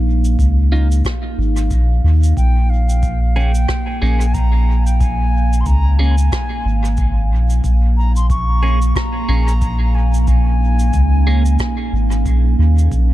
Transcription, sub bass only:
0.00 0.36 A#1 loud
0.39 1.02 C#2 medium
1.38 1.72 G#1 medium
1.71 2.00 A#1 medium
2.04 2.33 D#2 medium
2.37 3.66 A#1 medium
4.02 5.64 A#1 medium
5.66 6.30 C#2 medium
6.65 7.32 G#1 medium
7.31 7.61 A#1 medium
7.64 8.93 A#1 medium
9.29 10.91 A#1 loud
10.94 11.57 C#2 medium
11.93 12.27 G#1 medium
12.26 12.55 A#1 medium
12.59 12.88 D#2 medium
12.92 13.14 A#1 medium

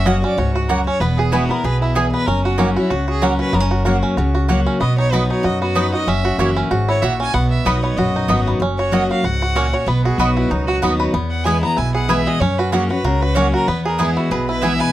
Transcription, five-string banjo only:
0.00 0.20 C#4 medium
0.06 0.37 F#4 medium
0.24 0.67 C#4 medium
0.38 0.54 F#4 medium
0.55 0.68 F#4 medium
0.70 1.01 F#4 medium
0.87 1.01 C#4 medium
1.01 1.47 B3 medium
1.19 1.62 G#4 medium
1.33 1.78 B4 medium
1.51 1.93 B3 medium
1.65 1.95 G#4 medium
1.82 2.25 E4 medium
1.96 2.27 G#4 medium
2.14 2.27 B3 medium
2.28 2.58 C#4 medium
2.45 2.76 F#4 medium
2.59 3.04 C#4 medium
2.77 2.90 F#4 medium
2.90 3.08 F#4 medium
3.08 3.39 F#4 medium
3.22 3.53 C#4 medium
3.39 3.71 F#4 medium
3.53 3.60 B3 medium
3.60 3.85 C#4 medium
3.71 3.85 F#4 medium
3.85 4.17 F#4 medium
4.03 4.46 C#4 medium
4.17 4.35 F#4 medium
4.35 4.49 F#4 medium
4.49 5.44 F#4 medium
4.66 4.80 C#4 medium
4.81 5.12 B3 medium
4.98 5.29 D#4 medium
5.13 5.58 B3 medium
5.30 5.73 D#4 medium
5.44 5.93 F#4 medium
5.62 6.05 B3 medium
5.76 6.07 D#4 medium
5.94 6.24 F#4 medium
6.08 6.53 C#4 medium
6.25 6.39 F#4 medium
6.39 6.70 F#4 medium
6.57 6.99 C#4 medium
6.71 7.02 F#4 medium
6.88 7.31 E4 medium
7.03 7.98 F#4 medium
7.20 7.34 C#4 medium
7.34 7.80 B3 medium
7.66 8.11 B4 medium
7.84 8.26 B3 medium
7.98 8.29 F#4 medium
8.16 8.58 D#4 medium
8.30 8.61 F#4 medium
8.47 8.61 B3 medium
8.62 9.07 C#4 medium
8.79 8.92 F#4 medium
8.93 9.10 F#4 medium
9.11 9.23 F#4 medium
9.24 9.41 F#4 medium
9.42 9.72 F#4 medium
9.56 9.87 C#4 medium
9.73 9.88 F#4 medium
9.88 10.82 B3 medium
10.05 10.36 F#4 medium
10.20 10.65 B4 medium
10.37 10.67 F#4 medium
10.51 10.97 D#4 medium
10.68 11.11 F#4 medium
10.82 11.13 B3 medium
11.00 11.14 B4 medium
11.14 11.60 B3 medium
11.45 11.91 G#4 medium
11.63 12.06 B3 medium
11.77 12.23 E4 medium
11.95 12.26 G#4 medium
12.09 12.41 B4 medium
12.27 12.41 G#4 medium
12.41 12.87 C#4 medium
12.59 12.72 F#4 medium
12.73 12.89 F#4 medium
12.90 13.04 F#4 soft
13.05 13.21 F#4 medium
13.22 13.52 F#4 medium
13.36 13.68 C#4 medium
13.54 13.68 F#4 medium
13.68 13.99 B3 medium
13.85 14.28 G#4 medium
14.00 14.45 B3 medium
14.17 14.48 E4 medium
14.32 14.77 B4 medium
14.49 14.92 E4 medium
14.63 14.92 G#4 medium
14.80 14.92 B4 medium

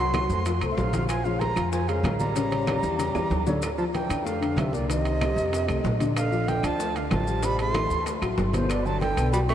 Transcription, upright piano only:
0.00 0.25 F#3 medium
0.00 0.25 F#4 medium
0.00 0.25 F#5 medium
0.31 0.43 A3 medium
0.31 0.44 A4 medium
0.31 0.44 C5 medium
0.46 0.59 F3 medium
0.46 0.59 F4 medium
0.46 0.59 F5 medium
0.62 0.88 A3 medium
0.62 0.88 A4 medium
0.62 0.88 C5 medium
0.94 1.20 F3 medium
0.94 1.20 F4 medium
0.94 1.20 F5 medium
1.25 1.38 F3 medium
1.25 1.38 F4 medium
1.25 1.38 F5 medium
1.41 1.54 G#3 medium
1.41 1.54 G#4 medium
1.41 1.54 A#4 medium
1.56 1.82 F3 medium
1.56 1.83 F4 medium
1.56 1.83 F5 medium
1.89 2.02 G#3 medium
1.89 2.02 G#4 medium
1.89 2.02 A#4 medium
2.04 2.30 G#3 medium
2.04 2.30 G#4 medium
2.04 2.30 A#4 medium
2.35 2.49 C#3 medium
2.35 2.49 C#4 medium
2.35 2.49 C#5 medium
2.51 2.77 C#3 medium
2.51 2.78 C#4 medium
2.51 2.78 C#5 medium
2.83 2.96 E3 medium
2.83 2.96 E4 medium
2.83 2.97 G4 medium
2.98 3.12 C#3 medium
2.98 3.12 C#4 medium
2.98 3.12 C#5 medium
3.15 3.41 E3 medium
3.15 3.41 E4 medium
3.15 3.42 G4 medium
3.46 3.60 D3 medium
3.46 3.59 D4 medium
3.46 3.60 D5 medium
3.78 4.04 F3 medium
3.78 4.04 F4 medium
4.09 4.23 D4 medium
4.09 4.23 D5 medium
4.25 4.38 A3 medium
4.25 4.39 A4 medium
4.41 4.67 D3 medium
4.41 4.67 D4 medium
4.72 4.86 A#3 medium
4.72 4.86 A#4 medium
4.89 5.15 D#3 medium
4.89 5.15 D#4 medium
5.20 5.47 G3 medium
5.20 5.47 G4 medium
5.52 5.66 C4 medium
5.52 5.65 C5 medium
5.68 5.94 A3 medium
5.68 5.94 A4 medium
5.99 6.26 D3 medium
5.99 6.26 D4 medium
6.31 6.58 F3 medium
6.31 6.58 F4 medium
6.64 6.77 D4 medium
6.64 6.77 D5 medium
6.79 6.92 A3 medium
6.79 6.92 A4 medium
6.95 7.21 D3 medium
6.95 7.21 D4 medium
7.27 7.40 G3 medium
7.27 7.40 G4 medium
7.43 7.69 C3 medium
7.43 7.69 C4 medium
7.74 8.00 E3 medium
7.74 8.01 E4 medium
8.06 8.19 A3 medium
8.06 8.19 A4 medium
8.21 8.48 F#3 medium
8.21 8.48 F#4 medium
8.53 8.80 B2 medium
8.53 8.80 B3 medium
8.85 9.11 D3 medium
8.85 9.12 D4 medium
9.16 9.30 B3 medium
9.16 9.30 B4 medium
9.33 9.46 F#3 medium
9.33 9.46 F#4 medium
9.48 9.54 B2 medium
9.48 9.54 B3 medium

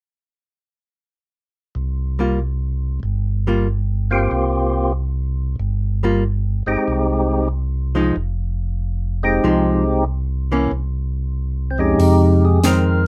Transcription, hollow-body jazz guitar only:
2.19 2.38 G3 soft
2.19 2.39 A#3 soft
2.19 2.39 F4 soft
3.47 3.66 G3 soft
3.47 3.67 A#3 soft
3.47 3.67 F4 medium
6.03 6.22 G3 soft
6.03 6.23 A#3 medium
6.03 6.23 F4 soft
7.95 8.14 F3 soft
7.95 8.14 G#3 medium
7.95 8.15 D#4 medium
9.44 9.83 F3 medium
9.44 9.83 G#3 medium
9.44 9.83 D#4 medium
10.52 10.70 E3 soft
10.52 10.71 A#3 medium
10.52 10.71 C#4 medium
12.64 13.02 D#3 soft
12.64 13.03 G#3 soft
12.64 13.03 C4 medium

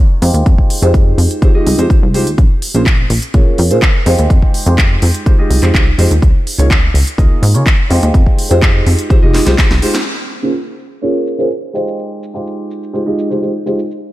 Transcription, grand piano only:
0.21 0.79 G#3 medium
0.21 0.80 D#4 medium
0.21 0.80 F4 medium
0.21 0.80 G4 medium
0.21 0.80 C5 medium
0.82 1.39 G#3 medium
0.82 1.39 D#4 medium
0.82 1.39 F4 medium
0.82 1.40 G4 medium
0.82 1.40 C5 medium
1.42 1.49 G#3 medium
1.42 1.49 D#4 medium
1.42 1.49 F4 medium
1.42 1.49 G4 medium
1.42 1.49 C5 loud
1.54 1.75 G#3 medium
1.54 1.76 D#4 medium
1.54 1.76 F4 medium
1.54 1.76 G4 medium
1.54 1.76 D#5 loud
1.78 1.85 G#3 medium
1.78 1.85 D#4 medium
1.78 1.85 F4 medium
1.78 1.85 G4 medium
1.78 1.85 C5 loud
1.90 1.97 D#4 medium
2.14 2.25 G#3 medium
2.14 2.25 D#4 medium
2.14 2.25 F4 medium
2.14 2.25 G4 medium
2.14 2.25 C5 loud
2.74 2.81 A#3 medium
2.74 2.81 C#4 medium
2.74 2.81 F4 medium
2.74 2.81 G#4 medium
2.74 2.81 C5 medium
3.34 3.68 A#3 medium
3.34 3.68 C#4 medium
3.34 3.68 F4 medium
3.34 3.68 G#4 medium
3.34 3.68 C#5 medium
3.70 3.77 A#3 medium
3.70 3.77 C#4 medium
3.70 3.77 F4 medium
3.70 3.77 G#4 medium
3.70 3.77 C5 medium
4.06 4.63 G#3 medium
4.06 4.64 D#4 medium
4.06 4.64 F4 medium
4.06 4.64 G4 medium
4.06 4.64 C5 medium
4.66 5.23 G#3 medium
4.66 5.23 D#4 medium
4.66 5.24 F4 medium
4.66 5.24 G4 medium
4.66 5.24 C5 medium
5.26 5.33 G#3 medium
5.26 5.33 D#4 medium
5.26 5.33 F4 medium
5.26 5.33 G4 medium
5.26 5.33 C5 loud
5.38 5.59 G#3 medium
5.38 5.60 D#4 medium
5.38 5.60 F4 medium
5.38 5.60 G4 medium
5.38 5.60 D#5 loud
5.62 5.69 G#3 medium
5.62 5.69 D#4 medium
5.62 5.69 F4 medium
5.62 5.69 G4 medium
5.62 5.69 C5 loud
5.74 5.81 G#3 medium
5.98 6.09 G#3 medium
5.98 6.09 D#4 medium
5.98 6.09 F4 medium
5.98 6.09 G4 medium
5.98 6.09 C5 loud
6.58 6.65 A#3 medium
6.58 6.65 D#4 medium
6.58 6.65 F4 medium
6.58 6.65 G#4 medium
6.58 6.65 C#5 medium
7.18 7.52 A#3 medium
7.18 7.52 D#4 medium
7.18 7.52 F4 medium
7.18 7.52 G#4 medium
7.18 7.52 D#5 medium
7.54 7.61 A#3 medium
7.54 7.61 D#4 medium
7.54 7.61 F4 medium
7.54 7.61 G#4 medium
7.54 7.61 C#5 medium
7.89 8.47 G#3 medium
7.89 8.47 D#4 medium
7.89 8.48 F4 medium
7.89 8.48 G4 medium
7.89 8.48 C5 medium
8.49 9.07 G#3 medium
8.49 9.07 D#4 medium
8.49 9.07 F4 medium
8.49 9.08 G4 medium
8.49 9.08 C5 medium
9.10 9.17 G#3 loud
9.10 9.17 D#4 medium
9.10 9.17 F4 medium
9.10 9.17 G4 medium
9.10 9.17 C5 loud
9.22 9.43 G#3 loud
9.22 9.43 D#4 medium
9.22 9.44 F4 medium
9.22 9.44 G4 medium
9.22 9.44 D#5 loud
9.46 9.53 G#3 medium
9.46 9.53 D#4 medium
9.46 9.53 F4 medium
9.46 9.53 G4 medium
9.46 9.53 C5 loud
9.58 9.65 D#4 medium
9.82 9.93 G#3 medium
9.82 9.93 D#4 medium
9.82 9.93 F4 medium
9.82 9.93 G4 medium
9.82 9.93 C5 loud
10.42 10.49 A#3 medium
10.42 10.49 C#4 medium
10.42 10.49 F4 medium
10.42 10.49 G#4 medium
10.42 10.49 C5 medium
11.02 11.35 A#3 medium
11.02 11.36 C#4 medium
11.02 11.36 F4 medium
11.02 11.36 G#4 medium
11.02 11.36 C#5 medium
11.38 11.45 A#3 medium
11.38 11.45 C#4 medium
11.38 11.45 F4 medium
11.38 11.45 G#4 medium
11.38 11.45 C5 medium
11.73 12.31 G#3 medium
11.73 12.31 D#4 medium
11.73 12.32 F4 medium
11.73 12.32 G4 medium
11.73 12.32 C5 medium
12.34 12.91 G#3 medium
12.34 12.91 D#4 medium
12.34 12.91 F4 medium
12.34 12.92 G4 medium
12.34 12.92 C5 medium
12.93 13.01 G#3 medium
12.93 13.01 D#4 medium
12.93 13.01 F4 medium
12.93 13.01 G4 medium
12.93 13.01 C5 loud
13.06 13.27 G#3 medium
13.06 13.27 D#4 medium
13.06 13.27 F4 medium
13.06 13.28 G4 medium
13.06 13.28 D#5 loud
13.30 13.37 G#3 medium
13.30 13.37 D#4 medium
13.30 13.37 F4 medium
13.30 13.37 G4 medium
13.30 13.37 C5 loud
13.42 13.49 G#3 medium
13.42 13.49 D#4 medium
13.42 13.49 F4 medium
13.42 13.49 G4 medium
13.42 13.49 C5 medium
13.66 13.77 G#3 medium
13.66 13.77 D#4 medium
13.66 13.77 F4 medium
13.66 13.77 G4 medium
13.66 13.77 C5 medium

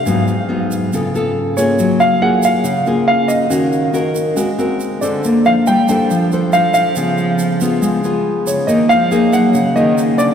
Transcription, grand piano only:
0.00 1.09 F5 medium
1.57 2.01 C#5 medium
2.00 2.20 F5 medium
2.22 2.42 F#5 medium
2.45 2.84 F5 medium
3.08 3.30 F5 medium
3.28 4.54 D#5 medium
5.01 5.46 D5 medium
5.46 5.51 F5 medium
5.67 5.88 G5 medium
5.89 6.28 G5 medium
6.53 6.72 F5 medium
6.74 7.99 F5 medium
8.47 8.69 C#5 medium
8.67 8.90 D#5 medium
8.89 9.34 F5 loud
9.33 9.77 F#5 medium
9.76 10.20 D#5 medium
10.18 10.34 D5 medium

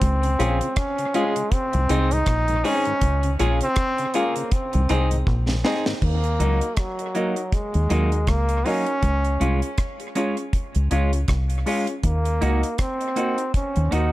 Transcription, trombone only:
0.00 0.79 C4 loud
0.78 1.17 C#4 loud
1.16 1.55 G#3 medium
1.53 2.14 C4 loud
2.13 2.68 D#4 loud
2.66 3.33 C#4 loud
3.63 4.18 C4 loud
4.17 4.56 A#3 medium
4.54 5.28 C4 medium
6.04 6.81 A#3 medium
6.80 7.56 F#3 medium
7.54 8.30 G#3 medium
8.29 8.68 A#3 loud
8.67 9.79 C#4 loud
12.05 12.81 A#3 medium
12.80 13.55 C4 loud
13.55 13.95 C#4 medium
13.93 14.12 D#4 loud

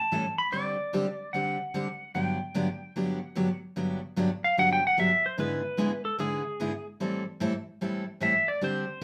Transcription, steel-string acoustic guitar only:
0.12 0.24 A2 medium
0.12 0.24 E3 medium
0.12 0.24 G3 medium
0.12 0.24 C#4 medium
0.12 0.24 E4 medium
0.12 0.24 A4 medium
0.52 0.75 D3 medium
0.52 0.75 G3 medium
0.52 0.75 C4 soft
0.52 0.76 D4 medium
0.52 0.75 G4 medium
0.93 1.05 D3 medium
0.93 1.05 G3 medium
0.93 1.05 C4 medium
0.93 1.06 D4 medium
0.93 1.06 G4 medium
1.34 1.56 D3 medium
1.34 1.57 G3 medium
1.34 1.57 C4 medium
1.34 1.57 D4 medium
1.34 1.57 G4 medium
1.74 1.86 D3 medium
1.74 1.86 G3 medium
1.74 1.86 C4 medium
1.74 1.87 D4 medium
1.74 1.87 G4 medium
2.15 2.37 G2 medium
2.15 2.37 D3 medium
2.15 2.37 F#3 medium
2.15 2.38 B3 medium
2.15 2.38 D4 medium
2.15 2.38 G4 medium
2.54 2.67 G2 medium
2.54 2.67 D3 medium
2.54 2.67 F#3 medium
2.54 2.67 B3 medium
2.54 2.67 D4 medium
2.54 2.67 G4 medium
2.96 3.18 G2 medium
2.96 3.18 D3 medium
2.96 3.18 F#3 medium
2.96 3.19 B3 medium
2.96 3.19 D4 medium
2.96 3.19 G4 medium
3.35 3.48 G2 medium
3.35 3.48 D3 medium
3.35 3.48 F#3 medium
3.35 3.48 B3 medium
3.35 3.48 D4 medium
3.35 3.48 G4 medium
3.76 3.99 G2 medium
3.76 3.99 D3 medium
3.76 3.99 F#3 medium
3.76 3.99 B3 medium
3.76 3.99 D4 medium
3.76 3.99 G4 medium
4.16 4.28 G2 medium
4.16 4.29 D3 medium
4.16 4.29 F#3 medium
4.16 4.29 B3 medium
4.16 4.29 D4 medium
4.16 4.29 G4 medium
4.57 4.80 G2 medium
4.57 4.80 D3 medium
4.57 4.80 F#3 medium
4.57 4.80 B3 medium
4.57 4.80 D4 medium
4.57 4.80 G4 medium
4.97 5.09 G2 medium
4.97 5.09 D3 medium
4.97 5.09 F#3 medium
4.97 5.10 B3 medium
4.97 5.10 D4 medium
4.97 5.10 G4 medium
5.38 5.60 G#2 medium
5.38 5.60 D3 medium
5.38 5.61 G#3 medium
5.38 5.61 B3 medium
5.38 5.61 E4 medium
5.38 5.61 G#4 medium
5.77 5.90 G#2 medium
5.77 5.90 D3 medium
5.77 5.90 G#3 medium
5.77 5.90 B3 medium
5.77 5.90 E4 medium
5.77 5.90 G#4 medium
6.18 6.41 G#2 medium
6.18 6.41 D3 medium
6.18 6.41 G#3 medium
6.18 6.41 B3 medium
6.18 6.42 E4 medium
6.18 6.42 G#4 medium
6.60 6.71 G#2 medium
6.60 6.71 D3 medium
6.60 6.72 G#3 medium
6.60 6.72 B3 medium
6.60 6.72 E4 medium
6.60 6.72 G#4 medium
7.00 7.22 A2 medium
7.00 7.23 E3 medium
7.00 7.23 G3 medium
7.00 7.23 C4 medium
7.00 7.23 E4 medium
7.00 7.23 A4 medium
7.40 7.52 A2 medium
7.40 7.52 E3 medium
7.40 7.52 G3 medium
7.40 7.52 C4 medium
7.40 7.53 E4 medium
7.40 7.53 A4 medium
7.81 8.03 A2 medium
7.81 8.03 E3 medium
7.81 8.03 G3 medium
7.81 8.04 C4 medium
7.81 8.04 E4 medium
7.81 8.04 A4 medium
8.20 8.32 A2 medium
8.20 8.33 E3 medium
8.20 8.33 G3 medium
8.20 8.33 C4 medium
8.20 8.33 E4 medium
8.20 8.33 A4 medium
8.61 8.84 D3 medium
8.61 8.84 G3 medium
8.61 8.84 C4 medium
8.61 8.84 D4 medium
8.61 8.84 G4 medium

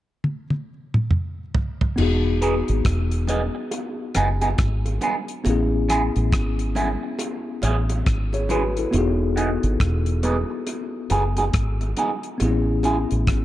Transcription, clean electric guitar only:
2.41 2.53 B3 medium
2.41 2.54 D#4 medium
2.41 2.54 G#4 medium
3.29 3.40 B3 medium
3.29 3.41 D#4 medium
3.29 3.41 G#4 medium
3.55 muted clean electric guitar stroke soft
4.15 4.27 B3 medium
4.15 4.27 D#4 medium
4.15 4.28 G#4 medium
4.42 4.49 B3 medium
4.42 4.48 D#4 medium
4.42 4.48 G#4 medium
5.02 5.14 B3 medium
5.02 5.14 D#4 medium
5.02 5.15 G#4 medium
5.89 6.01 C#4 medium
5.89 6.01 E4 medium
5.89 6.01 G#4 medium
6.76 6.88 C#4 medium
6.76 6.88 E4 medium
6.76 6.88 G#4 medium
7.03 muted clean electric guitar stroke soft
7.63 7.75 C#4 medium
7.63 7.75 E4 medium
7.63 7.76 G#4 medium
8.50 8.62 C#4 medium
8.50 8.62 E4 medium
8.50 8.62 G#4 medium
9.36 9.48 B3 medium
9.36 9.49 D#4 medium
9.36 9.49 G#4 medium
10.23 10.35 B3 medium
10.23 10.35 D#4 loud
10.23 10.36 G#4 medium
10.50 muted clean electric guitar stroke soft
11.11 11.22 B3 medium
11.11 11.23 D#4 medium
11.11 11.23 G#4 medium
11.38 11.44 B3 medium
11.38 11.44 D#4 medium
11.38 11.43 G#4 medium
11.97 12.09 B3 medium
11.97 12.10 D#4 medium
11.97 12.10 G#4 medium
12.84 12.96 C#4 medium
12.84 12.96 E4 medium
12.84 12.96 G#4 medium

